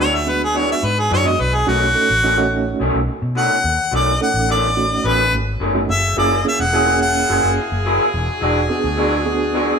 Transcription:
Already playing: D2
0.00 E3 G#3 D4 F#4 C#5
0.15 E5
0.27 G#3 B3 D4 F#4 B4
0.44 G#4
0.54 E3 G#3 D4 F#4 C#5
0.72 E5
0.83 G#2 B4
0.99 G#4
1.10 F#2 E3 G#3 D4 F#4 C#5
1.25 G#3 B3 D4 F#4 D#5
1.40 B1 B4
1.55 G#4
1.67 B1 B2 D#3 A3 C#4 D#4 F#4
1.95 A3 C#4 D#4 A4
2.10 A1
2.23 B2 D#3 A3 C#4 D#4 F#4
2.37 A3 C#4 D#4 F#4
2.80 B1 B2 D#3 A3 C#4
2.94 B1
3.22 B2
3.35 B2 D#3 A3 C#4 F#5
3.64 D#2
3.91 B1 B2 D#3 A3 C#4 D5
4.20 A3 C#4 D#4 A4 F#5
4.34 A1
4.48 B2 D#3 A3 C#4 D5
4.77 A3 C#4 D#4 F#4
5.04 A1 B2 D#3 A3 C#4 B4
5.33 G#1
5.60 F#1 B2 D#3 A3 C#4
5.75 A3 C#4 D#4 F#4
5.89 F#1 A#3 E4 G#4 E5
6.16 F#1 F#3 A#3 C#4 E4 G#4 D5
6.45 A#3 C#4 E4 G#4 E5
6.59 E1 F#5
6.72 F#3 A#3 C#4 E4 G#4
6.87 A#3 C#4 E4
7.02 F#5
7.29 F#1 F#3 A#3 E4 G#4
7.43 F#1
7.72 F#1
7.85 F#3 A#3 E4 G#4
8.13 E1 D4 F#4
8.41 E1 E3 G#3 D4 F#4
8.69 B3 D4 F#4 G#4
8.84 D2
8.97 E3 G#3 D4 F#4
9.26 B3 D4 F#4 G#4
9.54 E3 G#3 D4 F#4

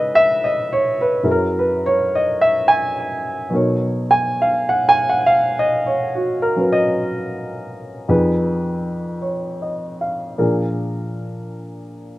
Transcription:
Already playing: C#3 G#3 D#4 E4 G#4 B4 D#5 E5
0.15 E5
0.44 D#5
0.73 C#5
1.01 B4
1.23 F#2 F#3 E4 G#4 A#4
1.31 A#4
1.59 B4
1.86 C#5
2.15 D#5
2.41 E5
2.68 G#5
3.50 B2 F#3 D#4
3.54 A#4 C#5
4.11 G#5
4.42 F5
4.69 F#5
4.89 G#5
5.09 F#5
5.26 F5
5.59 D#5
5.86 C#5
6.15 F#4
6.42 A#4
6.56 F#3 C#4 F#4 B4
6.73 D#5
8.09 F2 F3 D#4 G#4 B4
9.22 C#5
9.62 D#5
10.01 F5
10.38 A#2 F3 D4 G#4 A#4

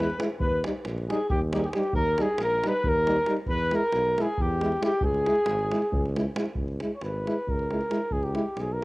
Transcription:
Already playing: E2 B4
0.10 davul high
0.19 G#3 E4, davul high
0.30 davul high
0.39 D#2 B4, davul low
0.64 G3 D#4, davul high
0.85 A#1, davul high
0.98 davul high
1.09 G3 D#4 G#4, davul high
1.30 D#2 G4, davul low
1.53 G3 D#4 G4 G#4, davul high
1.59 G#4
1.64 G4, davul high
1.68 G#4
1.73 G3 D#4 G4, davul high
1.83 davul high
1.93 D#2 A#4, davul low
2.18 G3 D#4 G#4, davul high
2.22 G#4
2.38 A#1 A#4, davul high
2.44 A#4
2.50 davul high
2.64 G3 D#4 B4, davul high
2.68 B4
2.84 D#2 A#4, davul low
2.89 A#4
3.07 G3 D#4, davul high
3.16 davul high
3.26 G3 D#4, davul high
3.37 davul high
3.46 E2 B4, davul low
3.71 G#3 E4 A#4, davul high
3.76 A#4
3.92 B1, davul high
4.05 davul high
4.17 G#3 E4 G#4, davul high
4.22 G#4
4.38 E2 G4, davul low
4.42 G4
4.61 G#3 E4, davul high
4.72 davul high
4.82 G#3 E4 G4, davul high
4.92 davul high
5.01 C#2 G#4, davul low
5.06 G#4
5.15 davul high
5.27 G#3 E4, davul high
5.36 davul high
5.46 G#1, davul high
5.59 davul high
5.72 G#3 E4, davul high
5.82 davul high
5.92 C#2, davul low
6.06 davul high
6.17 G#3 E4, davul high
6.36 G#3 E4, davul high
6.46 davul high
6.55 C#2, davul low
6.68 davul high
6.80 G#3 E4, davul high
6.96 C#5
7.01 G#1 B4, davul high
7.27 G#3 E4, davul high
7.47 C#2 A#4, davul low
7.59 davul high
7.70 G#3 E4, davul high
7.81 davul high
7.91 G#3 E4, davul high
8.11 C#2 G#4, davul low
8.23 G4, davul high
8.35 G#3 E4, davul high
8.56 B1, davul high
8.61 G#4
8.73 A#4

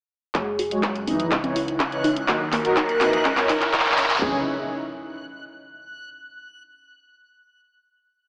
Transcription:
0.35 F#1 F#3 G#3 C#4 F#4 G#4 C#5 F#6, kick, clap, closed hi-hat, riser
0.59 F#4, open hi-hat
0.71 G#3 F#4 C#5, closed hi-hat
0.83 G#4, kick, clap, closed hi-hat
0.95 closed hi-hat
1.07 E3 C#4 D#4 D#5, open hi-hat, high conga
1.20 closed hi-hat, low conga
1.32 C#2 C#3 D#4 E4, kick, clap, closed hi-hat
1.44 E3 D#4 C#5, closed hi-hat, high conga, low conga
1.56 E4, open hi-hat
1.68 closed hi-hat
1.80 C#4, kick, clap, closed hi-hat
1.92 E3 D#4 C#5, closed hi-hat
2.04 D#4, open hi-hat
2.16 closed hi-hat
2.28 D#2 D#3 F#3 D#4 F#4 A#4, kick, clap, closed hi-hat
2.53 A#3 A#4, clap, open hi-hat
2.65 F#3 D#4 A#4, closed hi-hat
2.77 D#4, kick, clap, closed hi-hat
2.89 closed hi-hat
3.01 E3 D#4 F#4 D#5, clap, open hi-hat, high conga
3.13 closed hi-hat, low conga
3.25 C#2 C#3 C#4 E4, kick, clap, closed hi-hat
3.37 E3 D#4 C#5, clap, closed hi-hat, high conga
3.49 D#4, clap, open hi-hat, low conga
3.62 clap, closed hi-hat
3.74 E4, kick, clap, closed hi-hat
3.80 clap
3.86 E3 D#4 C#5, clap, closed hi-hat
3.92 clap
3.98 C#4, clap, open hi-hat
4.04 clap
4.10 clap, closed hi-hat
4.16 clap
4.22 C#2 C#3 E3 C#4 D#4 E4 G#4 C#5, kick, snare, clap, impact

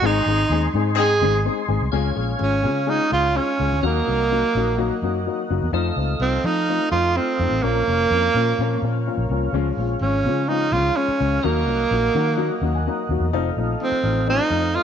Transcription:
Already playing: D#5
0.02 G#1 G#3 C4 D#4 G#4 G#5 C6
0.06 D#4
0.26 G#1 G#3 C4 D#4 G#4
0.49 D#2 G#3 C4 D#4 G#4
0.74 G#2 G#3 C4 D#4 G#4
0.95 C4 D#4 G#4
0.99 G#3 D#4
1.21 G#1 G#3 C4 D#4 G#4
1.45 G#3 C4 D#4 G#4
1.68 G#1 G#3 C4 D#4 G#4
1.81 C2
1.92 C#2 G#3 C#4 F4 G#4 C#5 F5 G#5
2.15 A#1 G#3 C#4 F4 G#4
2.38 G#1 G#3 C#4 F4 G#4
2.63 C#3 G#3 C#4 F4 G#4
2.87 G#3 C#4 D#4 F4 G#4
3.10 C#2 G#3 C#4 F4 G#4
3.35 G#3 C#4 F4 G#4
3.59 C#2 G#3 C#4 F4 G#4
3.71 D2
3.83 D#2 F#3 A#3 D#4 F#4 A#4 D#5 F#5
4.07 C2 F#3 A#3 D#4 F#4
4.31 F#3 A#3 D#4 F#4
4.55 A#1 F#3 A#3 D#4 F#4
4.78 F#3 A#3 D#4 F#4
5.02 F#2 F#3 A#3 D#4 F#4
5.27 F#3 A#3 D#4 F#4
5.50 F#1 F#3 A#3 D#4 F#4
5.62 E2
5.72 F2 A3 C4 D#4 F4 A4 D#5 F5
5.96 C#2 A3 C4 D#4 F4
6.20 C2 A3 C4 D#4 F4
6.44 F3 A3 C4 D#4 F4
6.69 A3 C4 D#4 F4
6.92 F2 A3 C4 D#4 F4
7.17 A3 C4 D#4 F4
7.39 F2 A3 C4 D#4 F4
7.51 A1
7.63 A#1 F3 A#3 C#4 F4 A#4 C#5
7.87 F1 F3 A#3 C#4 F4
8.11 F2 F3 A#3 C#4 F4
8.34 A#2 F3 A#3 C#4 F4
8.58 A#2 F3 A#3 C#4 F4
8.82 A#2 F3 A#3 C#4 F4
9.07 F3 A#3 C#4 F4
9.17 A#1
9.30 C2 F3 A#3 C#4 F4
9.52 C#2 F3 G#3 C#4 F4 G#4
9.77 A#1 F3 G#3 C#4 F4
10.01 G#1 F3 G#3 C#4 F4
10.25 C#3 F3 G#3 C#4 F4
10.49 F3 G#3 C#4 D#4 F4
10.72 C#2 F3 G#3 C#4 F4
10.96 F3 G#3 C#4 F4
11.08 muted fingered electric bass stroke
11.20 C#2 F3 G#3 C#4 F4
11.43 D#2 F#3 A#3 D#4 F#4 A#4 D#5 F#5
11.67 C2 F#3 A#3 D#4 F#4
11.91 A#1 F#3 A#3 D#4 F#4
12.15 D#3 F#3 A#3 D#4 F#4 F#5
12.28 F5
12.37 F#3 A#3 D#4 F#4 F#5
12.61 D#2 F#3 A#3 D#4 F#4
12.75 G#5
12.87 F#3 A#3 D#4 F#4 A#5
13.09 D#2 F#3 A#3 D#4 F#4
13.20 E2
13.32 F1 F3 A3 C4 D#4 A4 F5
13.57 A#1 F3 A3 C4 D#4
13.81 F3 A3 C4 D#4
13.92 muted fingered electric bass stroke
14.03 A1 F3 A3 C4 D#4
14.27 F3 A3 C4 D#4
14.50 F2 F3 A3 C4 D#4
14.75 F3 A3 C4 D#4 F4

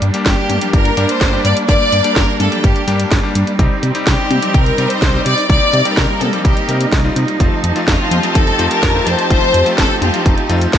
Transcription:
Already playing: G3 A#3 D4 G4
0.02 G2, closed hi-hat
0.14 G3 A#3 D4 G4, closed hi-hat
0.26 G1 G4, kick, snare, closed hi-hat
0.50 G2, closed hi-hat, high tom
0.61 G3 A#3 D4 G4, closed hi-hat
0.73 G1 A#4, kick, closed hi-hat
0.85 closed hi-hat
0.97 G2 G3 A#3 D4 G4, closed hi-hat
1.09 C5, closed hi-hat
1.21 G1, kick, snare, closed hi-hat
1.33 G3 A#3 D4 G4
1.45 G2 D5, closed hi-hat
1.57 closed hi-hat
1.68 G1 G3 A#3 D4 G4 D5, kick, closed hi-hat
1.92 G2, closed hi-hat
2.04 G3 A#3 D4 G4, closed hi-hat
2.16 G1 A#4, kick, snare, closed hi-hat
2.40 G2 A4, closed hi-hat, high tom
2.52 G3 A#3 D4 G4, closed hi-hat
2.64 G1 G4, kick, closed hi-hat
2.76 closed hi-hat
2.88 G2 G3 A#3 D4 G4, closed hi-hat
3.00 closed hi-hat
3.11 G1, kick, snare, closed hi-hat
3.23 G3 A#3 D4 G4
3.35 G2, closed hi-hat
3.47 closed hi-hat
3.59 C2 G3 C4 D#4 G4, kick, closed hi-hat
3.83 C3, closed hi-hat
3.95 G3 C4 D#4 G4, closed hi-hat
4.07 C2 G4, kick, snare, closed hi-hat
4.31 C3, closed hi-hat, high tom
4.42 G3 C4 D#4 G4, closed hi-hat
4.54 C2 A#4, kick, closed hi-hat
4.66 closed hi-hat
4.78 C3 G3 C4 D#4 G4, closed hi-hat
4.90 C5, closed hi-hat
5.02 C2, kick, snare, closed hi-hat
5.14 G3 C4 D#4 G4
5.26 C3 D5, closed hi-hat
5.38 closed hi-hat
5.50 C2 G3 A#3 C4 D#4 G4 D5, kick, closed hi-hat
5.73 C3, closed hi-hat
5.85 G3 C4 D#4 G4, closed hi-hat
5.97 C2 A#4, kick, snare, closed hi-hat
6.21 C3 A4, closed hi-hat, high tom
6.33 G3 C4 D#4 G4, closed hi-hat
6.45 C2 G4, kick, closed hi-hat
6.57 closed hi-hat
6.69 C3 G3 C4 D#4 A#4, closed hi-hat
6.81 closed hi-hat
6.92 C2, kick, snare, closed hi-hat
7.04 G3 C4 D#4 F4
7.16 C3, closed hi-hat
7.28 closed hi-hat
7.40 F1 F3 A3 C4 D#4 F4 G4 A5, kick, closed hi-hat
7.64 F2, closed hi-hat
7.76 A3 C4 D#4 F4, closed hi-hat
7.88 F1 F4, kick, snare, closed hi-hat
8.11 F2, closed hi-hat, high tom
8.23 A3 C4 D#4 F4, closed hi-hat
8.35 F1 A4, kick, closed hi-hat
8.47 closed hi-hat
8.59 F2 A3 C4 D#4 F4, closed hi-hat
8.71 A#4, closed hi-hat
8.83 F1, kick, snare, closed hi-hat
8.95 A3 C4 D#4 F4
9.07 F2 C5, closed hi-hat
9.19 closed hi-hat
9.30 F1 A3 C4 D#4 F4 C5, kick, closed hi-hat
9.54 F2, closed hi-hat
9.66 A3 C4 D#4 F4, closed hi-hat
9.78 F1 A4, kick, snare, closed hi-hat
10.02 F2 F4, closed hi-hat, high tom
10.14 A3 C4 D#4 F4, closed hi-hat
10.26 F1 D#4, kick, closed hi-hat
10.38 closed hi-hat
10.49 F2 A3 C4 D#4 F4, closed hi-hat
10.61 closed hi-hat
10.73 F1, kick, snare, closed hi-hat

